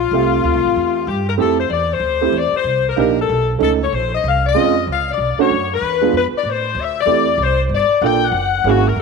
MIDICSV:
0, 0, Header, 1, 5, 480
1, 0, Start_track
1, 0, Key_signature, -1, "major"
1, 0, Tempo, 316122
1, 178, Time_signature, 4, 2, 24, 8
1, 13693, End_track
2, 0, Start_track
2, 0, Title_t, "Saxophone section"
2, 0, Program_c, 0, 65
2, 0, Note_on_c, 0, 65, 91
2, 1630, Note_off_c, 0, 65, 0
2, 1644, Note_on_c, 0, 67, 77
2, 1912, Note_off_c, 0, 67, 0
2, 1926, Note_on_c, 0, 70, 70
2, 2005, Note_off_c, 0, 70, 0
2, 2128, Note_on_c, 0, 69, 77
2, 2394, Note_off_c, 0, 69, 0
2, 2415, Note_on_c, 0, 72, 73
2, 2574, Note_off_c, 0, 72, 0
2, 2586, Note_on_c, 0, 74, 76
2, 2862, Note_off_c, 0, 74, 0
2, 2916, Note_on_c, 0, 72, 85
2, 3556, Note_off_c, 0, 72, 0
2, 3596, Note_on_c, 0, 74, 85
2, 3868, Note_off_c, 0, 74, 0
2, 3894, Note_on_c, 0, 72, 77
2, 4315, Note_off_c, 0, 72, 0
2, 4380, Note_on_c, 0, 70, 74
2, 4518, Note_off_c, 0, 70, 0
2, 4536, Note_on_c, 0, 70, 74
2, 4798, Note_off_c, 0, 70, 0
2, 4854, Note_on_c, 0, 69, 81
2, 5307, Note_off_c, 0, 69, 0
2, 5493, Note_on_c, 0, 69, 79
2, 5621, Note_off_c, 0, 69, 0
2, 5820, Note_on_c, 0, 73, 75
2, 5957, Note_off_c, 0, 73, 0
2, 5980, Note_on_c, 0, 72, 88
2, 6260, Note_off_c, 0, 72, 0
2, 6297, Note_on_c, 0, 75, 81
2, 6436, Note_off_c, 0, 75, 0
2, 6477, Note_on_c, 0, 77, 81
2, 6729, Note_off_c, 0, 77, 0
2, 6777, Note_on_c, 0, 75, 97
2, 7362, Note_off_c, 0, 75, 0
2, 7460, Note_on_c, 0, 77, 88
2, 7701, Note_off_c, 0, 77, 0
2, 7758, Note_on_c, 0, 74, 84
2, 8198, Note_off_c, 0, 74, 0
2, 8215, Note_on_c, 0, 73, 92
2, 8635, Note_off_c, 0, 73, 0
2, 8716, Note_on_c, 0, 71, 90
2, 9292, Note_off_c, 0, 71, 0
2, 9369, Note_on_c, 0, 71, 83
2, 9489, Note_off_c, 0, 71, 0
2, 9673, Note_on_c, 0, 74, 81
2, 9804, Note_off_c, 0, 74, 0
2, 9857, Note_on_c, 0, 72, 90
2, 10297, Note_off_c, 0, 72, 0
2, 10341, Note_on_c, 0, 76, 85
2, 10600, Note_off_c, 0, 76, 0
2, 10640, Note_on_c, 0, 74, 95
2, 11214, Note_off_c, 0, 74, 0
2, 11264, Note_on_c, 0, 72, 96
2, 11542, Note_off_c, 0, 72, 0
2, 11758, Note_on_c, 0, 74, 94
2, 12176, Note_off_c, 0, 74, 0
2, 12206, Note_on_c, 0, 79, 95
2, 12492, Note_off_c, 0, 79, 0
2, 12522, Note_on_c, 0, 78, 109
2, 13159, Note_off_c, 0, 78, 0
2, 13193, Note_on_c, 0, 66, 88
2, 13464, Note_on_c, 0, 70, 77
2, 13467, Note_off_c, 0, 66, 0
2, 13629, Note_off_c, 0, 70, 0
2, 13693, End_track
3, 0, Start_track
3, 0, Title_t, "Grand piano"
3, 0, Program_c, 1, 0
3, 196, Note_on_c, 1, 57, 49
3, 202, Note_on_c, 1, 60, 42
3, 217, Note_on_c, 1, 76, 45
3, 220, Note_on_c, 1, 67, 55
3, 1520, Note_off_c, 1, 57, 0
3, 1523, Note_off_c, 1, 60, 0
3, 1530, Note_off_c, 1, 76, 0
3, 1532, Note_off_c, 1, 67, 0
3, 2087, Note_on_c, 1, 57, 52
3, 2091, Note_on_c, 1, 60, 51
3, 2091, Note_on_c, 1, 64, 48
3, 2104, Note_on_c, 1, 67, 60
3, 2364, Note_off_c, 1, 57, 0
3, 2366, Note_off_c, 1, 60, 0
3, 2366, Note_off_c, 1, 64, 0
3, 2372, Note_off_c, 1, 67, 0
3, 3363, Note_on_c, 1, 57, 54
3, 3373, Note_on_c, 1, 60, 48
3, 3375, Note_on_c, 1, 67, 61
3, 3376, Note_on_c, 1, 64, 53
3, 3521, Note_off_c, 1, 57, 0
3, 3527, Note_off_c, 1, 60, 0
3, 3528, Note_off_c, 1, 64, 0
3, 3528, Note_off_c, 1, 67, 0
3, 4501, Note_on_c, 1, 58, 65
3, 4516, Note_on_c, 1, 62, 60
3, 4518, Note_on_c, 1, 63, 57
3, 4523, Note_on_c, 1, 67, 68
3, 4770, Note_off_c, 1, 58, 0
3, 4778, Note_off_c, 1, 62, 0
3, 4779, Note_off_c, 1, 63, 0
3, 4782, Note_off_c, 1, 67, 0
3, 5445, Note_on_c, 1, 57, 56
3, 5454, Note_on_c, 1, 61, 51
3, 5458, Note_on_c, 1, 63, 50
3, 5469, Note_on_c, 1, 69, 60
3, 5722, Note_off_c, 1, 57, 0
3, 5727, Note_off_c, 1, 61, 0
3, 5729, Note_off_c, 1, 63, 0
3, 5734, Note_off_c, 1, 69, 0
3, 6900, Note_on_c, 1, 56, 66
3, 6917, Note_on_c, 1, 60, 58
3, 6920, Note_on_c, 1, 61, 57
3, 6927, Note_on_c, 1, 65, 71
3, 7170, Note_off_c, 1, 56, 0
3, 7178, Note_off_c, 1, 60, 0
3, 7179, Note_off_c, 1, 61, 0
3, 7183, Note_off_c, 1, 65, 0
3, 8182, Note_on_c, 1, 57, 67
3, 8187, Note_on_c, 1, 61, 59
3, 8193, Note_on_c, 1, 62, 62
3, 8196, Note_on_c, 1, 66, 73
3, 8330, Note_off_c, 1, 57, 0
3, 8333, Note_off_c, 1, 61, 0
3, 8336, Note_off_c, 1, 62, 0
3, 8338, Note_off_c, 1, 66, 0
3, 9133, Note_on_c, 1, 56, 57
3, 9139, Note_on_c, 1, 62, 53
3, 9145, Note_on_c, 1, 59, 54
3, 9158, Note_on_c, 1, 65, 64
3, 9286, Note_off_c, 1, 56, 0
3, 9289, Note_off_c, 1, 62, 0
3, 9292, Note_off_c, 1, 59, 0
3, 9299, Note_off_c, 1, 65, 0
3, 10726, Note_on_c, 1, 57, 52
3, 10734, Note_on_c, 1, 60, 50
3, 10748, Note_on_c, 1, 67, 57
3, 10750, Note_on_c, 1, 64, 48
3, 11002, Note_off_c, 1, 57, 0
3, 11007, Note_off_c, 1, 60, 0
3, 11014, Note_off_c, 1, 64, 0
3, 11014, Note_off_c, 1, 67, 0
3, 12176, Note_on_c, 1, 58, 59
3, 12184, Note_on_c, 1, 62, 53
3, 12193, Note_on_c, 1, 65, 56
3, 12203, Note_on_c, 1, 69, 64
3, 12448, Note_off_c, 1, 58, 0
3, 12452, Note_off_c, 1, 62, 0
3, 12456, Note_off_c, 1, 65, 0
3, 12461, Note_off_c, 1, 69, 0
3, 13134, Note_on_c, 1, 58, 62
3, 13146, Note_on_c, 1, 64, 54
3, 13147, Note_on_c, 1, 61, 56
3, 13155, Note_on_c, 1, 68, 64
3, 13407, Note_off_c, 1, 58, 0
3, 13413, Note_off_c, 1, 61, 0
3, 13413, Note_off_c, 1, 64, 0
3, 13417, Note_off_c, 1, 68, 0
3, 13693, End_track
4, 0, Start_track
4, 0, Title_t, "Upright bass"
4, 0, Program_c, 2, 32
4, 0, Note_on_c, 2, 34, 77
4, 157, Note_off_c, 2, 34, 0
4, 171, Note_on_c, 2, 36, 79
4, 640, Note_off_c, 2, 36, 0
4, 663, Note_on_c, 2, 38, 85
4, 817, Note_off_c, 2, 38, 0
4, 817, Note_on_c, 2, 36, 49
4, 970, Note_off_c, 2, 36, 0
4, 979, Note_on_c, 2, 33, 55
4, 1127, Note_off_c, 2, 33, 0
4, 1147, Note_on_c, 2, 40, 77
4, 1608, Note_off_c, 2, 40, 0
4, 1626, Note_on_c, 2, 43, 82
4, 2082, Note_off_c, 2, 43, 0
4, 2091, Note_on_c, 2, 41, 72
4, 2560, Note_off_c, 2, 41, 0
4, 2575, Note_on_c, 2, 40, 83
4, 3024, Note_off_c, 2, 40, 0
4, 3033, Note_on_c, 2, 38, 77
4, 3511, Note_off_c, 2, 38, 0
4, 3527, Note_on_c, 2, 40, 87
4, 3812, Note_off_c, 2, 40, 0
4, 4011, Note_on_c, 2, 36, 77
4, 4479, Note_off_c, 2, 36, 0
4, 4509, Note_on_c, 2, 34, 85
4, 4969, Note_off_c, 2, 34, 0
4, 4998, Note_on_c, 2, 35, 79
4, 5453, Note_off_c, 2, 35, 0
4, 5473, Note_on_c, 2, 37, 87
4, 5931, Note_off_c, 2, 37, 0
4, 5958, Note_on_c, 2, 34, 76
4, 6413, Note_off_c, 2, 34, 0
4, 6432, Note_on_c, 2, 36, 87
4, 6890, Note_off_c, 2, 36, 0
4, 6927, Note_on_c, 2, 41, 78
4, 7378, Note_off_c, 2, 41, 0
4, 7396, Note_on_c, 2, 37, 80
4, 7852, Note_off_c, 2, 37, 0
4, 7860, Note_on_c, 2, 35, 71
4, 8139, Note_off_c, 2, 35, 0
4, 8353, Note_on_c, 2, 42, 80
4, 8810, Note_off_c, 2, 42, 0
4, 8826, Note_on_c, 2, 40, 79
4, 9287, Note_off_c, 2, 40, 0
4, 9302, Note_on_c, 2, 41, 77
4, 9580, Note_off_c, 2, 41, 0
4, 9770, Note_on_c, 2, 45, 74
4, 10238, Note_off_c, 2, 45, 0
4, 10245, Note_on_c, 2, 38, 82
4, 10705, Note_off_c, 2, 38, 0
4, 10715, Note_on_c, 2, 40, 82
4, 11191, Note_off_c, 2, 40, 0
4, 11201, Note_on_c, 2, 36, 84
4, 11667, Note_off_c, 2, 36, 0
4, 11677, Note_on_c, 2, 31, 74
4, 11966, Note_off_c, 2, 31, 0
4, 12168, Note_on_c, 2, 34, 84
4, 12616, Note_off_c, 2, 34, 0
4, 12625, Note_on_c, 2, 30, 79
4, 13106, Note_off_c, 2, 30, 0
4, 13121, Note_on_c, 2, 32, 88
4, 13595, Note_off_c, 2, 32, 0
4, 13603, Note_on_c, 2, 29, 80
4, 13693, Note_off_c, 2, 29, 0
4, 13693, End_track
5, 0, Start_track
5, 0, Title_t, "Muted upright bass strokes"
5, 3826, Note_on_c, 9, 29, 35
5, 3978, Note_off_c, 9, 29, 0
5, 8170, Note_on_c, 9, 29, 37
5, 8322, Note_off_c, 9, 29, 0
5, 9608, Note_on_c, 9, 29, 34
5, 9760, Note_off_c, 9, 29, 0
5, 11987, Note_on_c, 9, 29, 37
5, 12139, Note_off_c, 9, 29, 0
5, 13693, End_track
0, 0, End_of_file